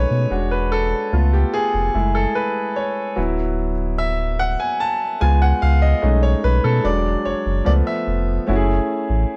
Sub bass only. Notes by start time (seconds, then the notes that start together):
0.11 B2
0.31 E1
1.13 C#2
1.74 F1
1.95 F#1
3.17 D1
5.22 C#2
5.63 C#2
6.03 B1
6.44 B1
6.64 B2
6.84 E1
7.26 F#1
7.46 F#1
7.67 C#2
8.07 F1
8.49 F#1
9.09 A1